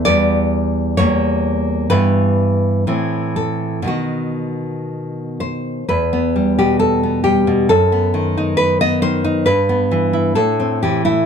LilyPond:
\new Staff \with { instrumentName = "Nylon-string guitar" } { \time 2/4 \key e \minor \tempo 4 = 65 << { d''4 cis''4 | b'4. a'8 | fis'4. c''8 | b'8. g'16 a'8 g'8 |
a'4 b'16 dis''16 c''8 | b'4 a'8 g'16 e'16 | } \\ { <e, g b>4 <e, g bes>4 | <g, e b>4 <a, e c'>4 | <b, dis b>2 | e,16 b16 g16 b,8 b16 g16 b,16 |
fis,16 b16 dis16 dis'8 b16 dis16 dis'16 | g,16 b16 e16 e'16 a,16 c'16 e16 a16 | } >> }